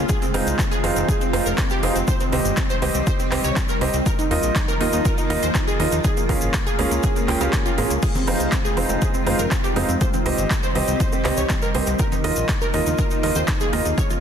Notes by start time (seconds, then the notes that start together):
Already playing: G#3 F4
0.09 D#3 C4 G#4, kick, closed hi-hat, shaker
0.22 C4, closed hi-hat, shaker
0.34 F1 C4 D#4 F4 G#4 C5 F5, open hi-hat
0.47 C2, closed hi-hat, shaker
0.59 C4, kick, clap, closed hi-hat, shaker
0.71 G#4, shaker
0.84 F1 C4 D#4 F4 G#4 C5 F5, open hi-hat
0.96 F1 C4, closed hi-hat, shaker
1.08 G#4, kick, closed hi-hat, shaker
1.21 C4, closed hi-hat, shaker
1.33 F1 C4 D#4 F4 G#4 C5 F5, open hi-hat
1.46 F1 A#4, closed hi-hat, shaker
1.57 C4, kick, clap, closed hi-hat, shaker
1.70 G4, shaker
1.83 F1 C4 D#4 F4 G#4 C5 F5, open hi-hat
1.96 F1 C4, closed hi-hat, shaker
2.08 G3 G4 C5, kick, closed hi-hat, shaker
2.20 C4, closed hi-hat, shaker
2.32 C2 C4 G4 C5 D#5, open hi-hat
2.45 G1, closed hi-hat, shaker
2.57 C4, kick, clap, closed hi-hat, shaker
2.70 C5, shaker
2.82 C2 C4 G4 C5 D#5, open hi-hat
2.95 C2 C4, closed hi-hat, shaker
3.07 C5, kick, closed hi-hat, shaker
3.20 C4, closed hi-hat, shaker
3.31 C2 C4 G4 C5 D#5, clap, open hi-hat
3.44 C2 C#5, closed hi-hat, shaker
3.56 C4, kick, clap, closed hi-hat, shaker
3.68 A#4, shaker
3.81 C2 C4 G4 C5 D#5, open hi-hat
3.93 C2 C4, closed hi-hat, shaker
4.06 D#3 F3 A#3 F4 A#4, kick, closed hi-hat, shaker
4.19 D#4, closed hi-hat, shaker
4.31 D#2 D#4 F4 A#4 D#5, open hi-hat
4.43 A#1, closed hi-hat, shaker
4.56 D#4, kick, clap, closed hi-hat, shaker
4.68 A#4, shaker
4.80 D#2 D#4 F4 A#4 D#5, open hi-hat
4.93 D#2 D#4, closed hi-hat, shaker
5.05 A#4, kick, closed hi-hat, shaker
5.18 D#4, closed hi-hat, shaker
5.30 D#2 D#4 F4 A#4 D#5, open hi-hat
5.43 D#2 C5, closed hi-hat, shaker
5.55 D#4, kick, clap, closed hi-hat, shaker
5.67 G#4, shaker
5.80 D#2 D#4 F4 A#4 D#5, open hi-hat
5.92 D#2 D#4, closed hi-hat, shaker
6.04 C#3 G#3 G#4, kick, closed hi-hat, shaker
6.17 A#3, closed hi-hat, shaker
6.29 C#2 A#3 C#4 F4 G#4 A#4 F5, kick, open hi-hat
6.41 G#1, closed hi-hat, shaker
6.54 A#3, kick, clap, closed hi-hat, shaker
6.67 G#4, closed hi-hat, shaker
6.79 C#2 A#3 C#4 F4 G#4 A#4 F5, open hi-hat
6.91 C#2 A#3, closed hi-hat, shaker
7.03 G#4, kick, closed hi-hat, shaker
7.16 A#3, closed hi-hat, shaker
7.28 C#2 A#3 C#4 F4 G#4 A#4 G5, clap, open hi-hat
7.41 C#2 C#4 F4 G4 G#4 A#4 F5, closed hi-hat, shaker
7.53 A#3, kick, clap, closed hi-hat, shaker
7.66 F4, closed hi-hat, shaker
7.78 G#1 A#3 C#4 F4 G#4 A#4 F5, open hi-hat
7.90 C#2 A#3, closed hi-hat, shaker
8.02 D#3 C4 F4 G#4, kick, closed hi-hat, crash, shaker
8.15 C4, closed hi-hat, high conga, shaker
8.27 F1 C4 D#4 F4 G#4 C5 F5, open hi-hat
8.40 C2, closed hi-hat, high bongo, shaker
8.52 C4, kick, clap, closed hi-hat, shaker
8.65 G#4, shaker
8.77 F1 C4 D#4 F4 G#4 C5 F5, open hi-hat, high conga
8.89 F1 C4, closed hi-hat, high bongo, low conga, shaker
9.02 G#4, kick, closed hi-hat, shaker
9.14 C4, closed hi-hat, shaker
9.27 F1 C4 D#4 F4 G#4 C5 F5, open hi-hat, low conga
9.39 F1 A#4, closed hi-hat, high conga, shaker
9.51 C4, kick, clap, closed hi-hat, high bongo, shaker
9.64 G4, shaker
9.76 F1 C4 D#4 F4 G#4 C5 F5, open hi-hat, low conga
9.89 F1 C4, closed hi-hat, shaker
10.01 G3 G4 C5, kick, closed hi-hat, high bongo, shaker
10.14 C4, closed hi-hat, high conga, shaker
10.26 C2 C4 G4 C5 D#5, open hi-hat
10.38 G1, closed hi-hat, shaker
10.50 C4, kick, clap, closed hi-hat, shaker
10.63 C5, high bongo, shaker
10.75 C2 C4 G4 C5 D#5, open hi-hat, high conga
10.88 C2 C4, closed hi-hat, shaker
11.00 C5, kick, closed hi-hat, shaker
11.12 C4, closed hi-hat, high bongo, shaker
11.25 C2 C4 G4 C5 D#5, clap, open hi-hat, low conga
11.37 C2 C#5, closed hi-hat, high conga, shaker
11.49 C4, kick, clap, closed hi-hat, shaker
11.62 A#4, shaker
11.74 C2 C4 G4 C5 D#5, open hi-hat, high bongo, low conga
11.87 C2 C4, closed hi-hat, shaker
11.99 D#3 F3 A#3 F4 A#4, kick, closed hi-hat, shaker
12.12 D#4, closed hi-hat, high conga, shaker
12.24 D#2 D#4 F4 A#4 D#5, open hi-hat, high bongo
12.36 A#1, closed hi-hat, shaker
12.49 D#4, kick, clap, closed hi-hat, shaker
12.61 A#4, shaker
12.73 D#2 D#4 F4 A#4 D#5, open hi-hat, high conga
12.86 D#2 D#4, closed hi-hat, high bongo, low conga, shaker
12.98 A#4, kick, closed hi-hat, shaker
13.11 D#4, closed hi-hat, shaker
13.23 D#2 D#4 F4 A#4 D#5, open hi-hat, low conga
13.35 D#2 C5, closed hi-hat, high bongo, high conga, shaker
13.48 D#4, kick, clap, closed hi-hat, shaker
13.60 G#4, shaker
13.73 D#2 D#4 F4 A#4 D#5, open hi-hat, low conga
13.85 D#2 D#4, closed hi-hat, shaker
13.97 C#3 G#3 A#3 C#5, kick, closed hi-hat, high bongo, shaker
14.10 F4, closed hi-hat, high conga, shaker